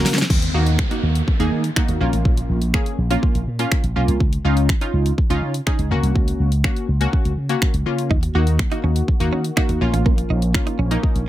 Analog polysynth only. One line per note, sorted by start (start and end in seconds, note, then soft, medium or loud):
0.00 0.17 A#3 medium
0.00 0.17 C#4 medium
0.00 0.17 F#4 medium
0.00 0.17 A#4 loud
0.54 0.78 A#3 loud
0.54 0.78 D#4 medium
0.54 0.78 F#4 loud
0.91 1.23 A#3 medium
0.91 1.23 D#4 medium
0.91 1.23 F#4 medium
1.40 1.63 A#3 loud
1.40 1.64 D#4 medium
1.40 1.64 G#4 loud
1.76 1.99 A#3 medium
1.76 2.01 D#4 medium
1.76 2.01 F#4 loud
2.01 2.59 A#3 loud
2.01 2.59 C#4 medium
2.01 2.60 F4 loud
2.74 2.98 A#3 medium
2.74 2.98 C#4 medium
2.74 2.98 G#4 medium
3.10 3.42 A#3 loud
3.10 3.42 C#4 medium
3.10 3.42 F4 loud
3.59 3.83 A#3 medium
3.59 3.83 C#4 medium
3.59 3.83 F4 loud
3.96 4.20 A#3 medium
3.96 4.20 C#4 medium
3.96 4.21 F4 loud
4.45 4.68 C#4 loud
4.45 4.69 D#4 medium
4.45 4.69 F4 loud
4.81 5.13 C#4 medium
4.81 5.13 D#4 medium
4.81 5.13 F4 loud
5.30 5.54 C#4 loud
5.30 5.54 D#4 medium
5.30 5.54 F4 loud
5.67 5.90 C#4 medium
5.67 5.91 D#4 medium
5.67 5.91 G#4 loud
5.91 6.50 A#3 medium
5.91 6.50 C#4 medium
5.91 6.50 F#4 loud
6.64 6.88 A#3 medium
6.64 6.88 C#4 medium
6.64 6.88 F#4 medium
7.01 7.32 A#3 medium
7.01 7.32 C#4 medium
7.01 7.33 F#4 loud
7.49 7.73 A#3 loud
7.49 7.73 C#4 medium
7.49 7.73 F#4 loud
7.86 8.11 A#3 medium
7.86 8.11 C#4 medium
7.86 8.11 F4 loud
8.35 8.59 A#3 loud
8.35 8.59 D#4 medium
8.35 8.59 F#4 loud
8.71 9.03 A#3 medium
8.71 9.03 D#4 medium
8.71 9.03 F#4 medium
9.20 9.44 A#3 loud
9.20 9.44 D#4 loud
9.20 9.44 F#4 loud
9.57 9.80 A#3 loud
9.57 9.81 D#4 medium
9.57 9.81 F#4 loud
9.81 10.40 A#3 loud
9.81 10.40 C#4 medium
9.81 10.40 F4 loud
10.54 10.78 A#3 medium
10.54 10.78 C#4 medium
10.54 10.78 F4 medium
10.91 11.23 A#3 loud
10.91 11.23 C#4 medium
10.91 11.23 D#4 loud